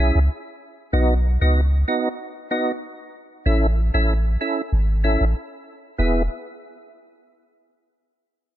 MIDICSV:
0, 0, Header, 1, 3, 480
1, 0, Start_track
1, 0, Key_signature, 4, "major"
1, 0, Tempo, 631579
1, 710, Time_signature, 4, 2, 24, 8
1, 6507, End_track
2, 0, Start_track
2, 0, Title_t, "Tonewheel organ"
2, 0, Program_c, 0, 16
2, 0, Note_on_c, 0, 61, 78
2, 0, Note_on_c, 0, 64, 73
2, 0, Note_on_c, 0, 68, 74
2, 0, Note_on_c, 0, 76, 91
2, 147, Note_off_c, 0, 61, 0
2, 148, Note_off_c, 0, 64, 0
2, 148, Note_off_c, 0, 68, 0
2, 149, Note_off_c, 0, 76, 0
2, 707, Note_on_c, 0, 59, 96
2, 708, Note_on_c, 0, 63, 89
2, 710, Note_on_c, 0, 66, 89
2, 711, Note_on_c, 0, 75, 110
2, 866, Note_off_c, 0, 59, 0
2, 867, Note_off_c, 0, 63, 0
2, 868, Note_off_c, 0, 66, 0
2, 869, Note_off_c, 0, 75, 0
2, 1075, Note_on_c, 0, 59, 80
2, 1076, Note_on_c, 0, 63, 71
2, 1077, Note_on_c, 0, 66, 71
2, 1079, Note_on_c, 0, 75, 85
2, 1223, Note_off_c, 0, 59, 0
2, 1224, Note_off_c, 0, 63, 0
2, 1225, Note_off_c, 0, 66, 0
2, 1225, Note_off_c, 0, 75, 0
2, 1428, Note_on_c, 0, 59, 78
2, 1429, Note_on_c, 0, 63, 73
2, 1431, Note_on_c, 0, 66, 72
2, 1432, Note_on_c, 0, 75, 89
2, 1587, Note_off_c, 0, 59, 0
2, 1587, Note_off_c, 0, 63, 0
2, 1588, Note_off_c, 0, 66, 0
2, 1589, Note_off_c, 0, 75, 0
2, 1907, Note_on_c, 0, 59, 80
2, 1908, Note_on_c, 0, 63, 74
2, 1910, Note_on_c, 0, 66, 74
2, 1912, Note_on_c, 0, 75, 89
2, 2066, Note_off_c, 0, 59, 0
2, 2067, Note_off_c, 0, 63, 0
2, 2068, Note_off_c, 0, 66, 0
2, 2069, Note_off_c, 0, 75, 0
2, 2627, Note_on_c, 0, 61, 95
2, 2630, Note_on_c, 0, 64, 83
2, 2631, Note_on_c, 0, 69, 85
2, 2633, Note_on_c, 0, 76, 99
2, 2787, Note_off_c, 0, 61, 0
2, 2788, Note_off_c, 0, 64, 0
2, 2789, Note_off_c, 0, 69, 0
2, 2789, Note_off_c, 0, 76, 0
2, 2995, Note_on_c, 0, 61, 78
2, 2996, Note_on_c, 0, 64, 72
2, 2998, Note_on_c, 0, 69, 70
2, 3000, Note_on_c, 0, 76, 87
2, 3144, Note_off_c, 0, 61, 0
2, 3144, Note_off_c, 0, 64, 0
2, 3145, Note_off_c, 0, 69, 0
2, 3146, Note_off_c, 0, 76, 0
2, 3350, Note_on_c, 0, 61, 79
2, 3352, Note_on_c, 0, 64, 74
2, 3353, Note_on_c, 0, 69, 74
2, 3355, Note_on_c, 0, 76, 89
2, 3508, Note_off_c, 0, 61, 0
2, 3509, Note_off_c, 0, 64, 0
2, 3509, Note_off_c, 0, 69, 0
2, 3510, Note_off_c, 0, 76, 0
2, 3829, Note_on_c, 0, 61, 82
2, 3831, Note_on_c, 0, 64, 71
2, 3832, Note_on_c, 0, 69, 75
2, 3834, Note_on_c, 0, 76, 88
2, 3988, Note_off_c, 0, 61, 0
2, 3988, Note_off_c, 0, 64, 0
2, 3989, Note_off_c, 0, 69, 0
2, 3990, Note_off_c, 0, 76, 0
2, 4548, Note_on_c, 0, 59, 89
2, 4551, Note_on_c, 0, 64, 76
2, 4554, Note_on_c, 0, 68, 79
2, 4556, Note_on_c, 0, 76, 97
2, 4730, Note_off_c, 0, 59, 0
2, 4732, Note_off_c, 0, 64, 0
2, 4733, Note_off_c, 0, 68, 0
2, 4735, Note_off_c, 0, 76, 0
2, 6507, End_track
3, 0, Start_track
3, 0, Title_t, "Sub bass"
3, 0, Program_c, 1, 38
3, 0, Note_on_c, 1, 35, 109
3, 86, Note_off_c, 1, 35, 0
3, 117, Note_on_c, 1, 37, 93
3, 219, Note_off_c, 1, 37, 0
3, 709, Note_on_c, 1, 35, 100
3, 1047, Note_off_c, 1, 35, 0
3, 1076, Note_on_c, 1, 37, 87
3, 1399, Note_off_c, 1, 37, 0
3, 2630, Note_on_c, 1, 33, 107
3, 2967, Note_off_c, 1, 33, 0
3, 2998, Note_on_c, 1, 33, 86
3, 3320, Note_off_c, 1, 33, 0
3, 3592, Note_on_c, 1, 32, 108
3, 3928, Note_off_c, 1, 32, 0
3, 3958, Note_on_c, 1, 33, 82
3, 4060, Note_off_c, 1, 33, 0
3, 4553, Note_on_c, 1, 28, 100
3, 4775, Note_off_c, 1, 28, 0
3, 6507, End_track
0, 0, End_of_file